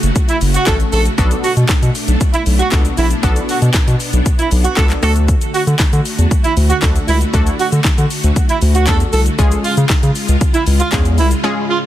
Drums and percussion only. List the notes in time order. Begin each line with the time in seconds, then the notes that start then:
0.03 closed hi-hat, shaker
0.16 kick, closed hi-hat, shaker
0.29 closed hi-hat, shaker
0.41 open hi-hat, shaker
0.54 closed hi-hat, shaker
0.66 kick, snare, clap, closed hi-hat, shaker
0.80 closed hi-hat, shaker
0.92 open hi-hat, shaker
1.05 closed hi-hat, shaker
1.18 kick, closed hi-hat, shaker
1.31 closed hi-hat, shaker
1.44 open hi-hat, shaker
1.57 closed hi-hat, shaker
1.69 kick, snare, clap, closed hi-hat, shaker
1.83 closed hi-hat, shaker
1.95 open hi-hat, shaker
2.08 closed hi-hat, shaker
2.21 kick, closed hi-hat, shaker
2.34 closed hi-hat, shaker
2.46 open hi-hat, shaker
2.59 closed hi-hat, shaker
2.72 kick, snare, clap, closed hi-hat, shaker
2.85 closed hi-hat, shaker
2.97 open hi-hat, shaker
3.10 closed hi-hat, shaker
3.23 kick, closed hi-hat, shaker
3.36 closed hi-hat, shaker
3.49 open hi-hat, shaker
3.62 closed hi-hat, shaker
3.74 kick, snare, clap, closed hi-hat, shaker
3.88 closed hi-hat, shaker
4.00 open hi-hat, shaker
4.13 closed hi-hat, shaker
4.26 kick, closed hi-hat, shaker
4.39 closed hi-hat, shaker
4.51 open hi-hat, shaker
4.65 closed hi-hat, shaker
4.77 kick, snare, clap, closed hi-hat, shaker
4.90 clap, closed hi-hat, shaker
5.03 open hi-hat, shaker
5.16 closed hi-hat, shaker
5.28 kick, closed hi-hat, shaker
5.41 closed hi-hat, shaker
5.54 open hi-hat, shaker
5.67 closed hi-hat, shaker
5.79 kick, snare, clap, closed hi-hat, shaker
5.93 closed hi-hat, shaker
6.05 open hi-hat, shaker
6.19 closed hi-hat, shaker
6.31 kick, closed hi-hat, shaker
6.44 closed hi-hat, shaker
6.57 open hi-hat, shaker
6.70 closed hi-hat, shaker
6.82 kick, snare, clap, closed hi-hat, shaker
6.96 closed hi-hat, shaker
7.08 open hi-hat, shaker
7.21 closed hi-hat, shaker
7.34 kick, closed hi-hat, shaker
7.47 closed hi-hat, shaker
7.59 open hi-hat, shaker
7.72 closed hi-hat, shaker
7.84 kick, snare, clap, closed hi-hat, shaker
7.98 closed hi-hat, shaker
8.10 open hi-hat, shaker
8.24 closed hi-hat, shaker
8.36 kick, closed hi-hat, shaker
8.49 closed hi-hat, shaker
8.62 open hi-hat, shaker
8.75 closed hi-hat, shaker
8.87 kick, snare, clap, closed hi-hat, shaker
9.00 closed hi-hat, shaker
9.13 open hi-hat, shaker
9.26 closed hi-hat, shaker
9.39 kick, closed hi-hat, shaker
9.52 closed hi-hat, shaker
9.64 open hi-hat, shaker
9.77 closed hi-hat, shaker
9.89 kick, snare, clap, closed hi-hat, shaker
10.03 closed hi-hat, shaker
10.15 open hi-hat, shaker
10.28 closed hi-hat, shaker
10.41 kick, closed hi-hat, shaker
10.54 closed hi-hat, shaker
10.66 open hi-hat, shaker
10.80 closed hi-hat, shaker
10.92 kick, snare, clap, closed hi-hat, shaker
11.05 closed hi-hat, shaker
11.18 open hi-hat, shaker
11.31 closed hi-hat, shaker